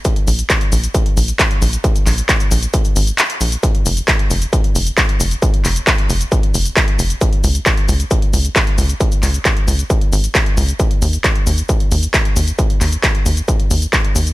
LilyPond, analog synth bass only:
\new Staff \with { instrumentName = "Analog synth bass" } { \clef bass \time 4/4 \key des \lydian \tempo 4 = 134 r8 bes,,8 r8 bes,,8 r8 bes,,8 r8 bes,,8 | r8 bes,,8 r8 bes,,8 r8 aes,,8 r8 bes,,8 | r8 f,,8 r8 f,,8 r8 f,,8 r8 f,,8 | r8 f,,8 r8 f,,8 r8 f,,8 r8 f,,8 |
r8 des,8 r8 des,8 r8 des,8 r8 des,8 | r8 des,8 r8 des,8 r8 aes,,8 r8 des,8 | r8 ees,8 r8 ees,8 r8 ees,8 r8 ees,8 | r8 ees,8 r8 ees,8 r8 ees,8 r8 ees,8 | }